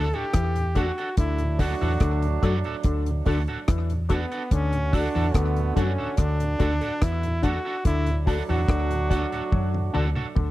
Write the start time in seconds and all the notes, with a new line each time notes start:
Already playing: D2 D3 A3 E4 A4
0.13 D2 A2 D4 F#4 G4 A4, closed hi-hat
0.33 E2 E3, kick, cross-stick, closed hi-hat
0.56 D2 A2, closed hi-hat
0.75 A3 D4 F#4 A4, kick, closed hi-hat
0.98 D4 F#4 A4, closed hi-hat
1.17 D2 D3 F#3 A3 D4 E4, kick, closed hi-hat
1.38 D2 A2, closed hi-hat
1.59 A3 D4 F#4 A4, kick, open hi-hat
1.81 D2 E2 A2 E3 D4 F#4 A4
2.00 D2 D3, kick, cross-stick, closed hi-hat
2.22 D2 A2, closed hi-hat
2.42 F#2 F#3 A3 D4 F#4 A4, kick, closed hi-hat
2.64 D2 A2 D4 F#4 A4, closed hi-hat
2.83 D2 D3, kick, closed hi-hat
3.06 D2 A2, closed hi-hat
3.26 D2 D3 A3 D4 F#4 A4, kick, open hi-hat
3.47 D2 A2 D4 F#4 A4, closed hi-hat
3.68 E2 E3, kick, cross-stick, closed hi-hat
3.90 D2 A2, closed hi-hat
4.09 A3 B3 D4 F#4 A4, kick, closed hi-hat
4.32 D4 F#4 A4, closed hi-hat
4.51 D2 D3 A3 C#4 F#4, kick, closed hi-hat
4.73 D2 A2, closed hi-hat
4.92 A3 D4 F#4 A4, kick, open hi-hat
5.15 D2 E2 A2 E3 D4 F#4 A4
5.34 D2 D3 B3, kick, cross-stick, closed hi-hat
5.57 D2 A2, closed hi-hat
5.76 F#2 F#3 A3 C#4 D4 F#4 A4, kick, closed hi-hat
5.98 D2 A2 D4 F#4 A4
6.17 D2 D3 D4, kick, cross-stick, closed hi-hat
6.40 D2 A2, closed hi-hat
6.59 D2 D3 A3 D4 F#4 A4, kick, closed hi-hat
6.81 D2 A2 D4 F#4 A4, closed hi-hat
7.02 E2 E3 E4, kick, cross-stick, closed hi-hat
7.23 D2 A2, closed hi-hat
7.42 A3 D4 F#4 A4, kick, closed hi-hat
7.65 D4 F#4 A4
7.85 D2 D3 F#3 A3 D4 E4, kick, closed hi-hat
8.06 D2 A2, closed hi-hat
8.26 A3 D4 F#4 A4, kick, open hi-hat
8.49 D2 E2 A2 E3 D4 F#4 A4
8.68 D2 D3, kick, cross-stick, closed hi-hat
8.90 D2 A2, closed hi-hat
9.10 A3 D4 F#4 A4, kick, closed hi-hat
9.32 D2 A2 D4 F#4 A4, closed hi-hat
9.52 F#2 F#3, kick, high tom
9.74 D2 A2, high tom
9.93 D2 D3 A3 D4 F#4 A4, mid tom
10.15 D2 A2 D4 F#4 A4, mid tom
10.36 D2 D3, kick, mid tom